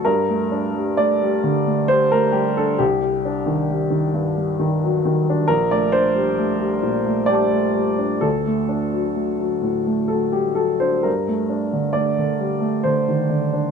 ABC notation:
X:1
M:3/4
L:1/16
Q:1/4=66
K:Gm
V:1 name="Upright piano"
B4 d4 c B G A | G6 z6 | B d c6 [dgad']4 | A8 A G A c |
B4 d4 c4 |]
V:2 name="Upright piano" clef=bass
G,, A, D G, A, G, D, A, G, A, G, D | C,, G, D E, G, E, G,, G, E, ^F, E, D | B,,, A, D G, A, G, B,, A, G, A, G, D | D,, A, D ^F, A, F, A,, A, F, G, F, D |
G,, A, D D, A, D, G, A, D, E, D, D |]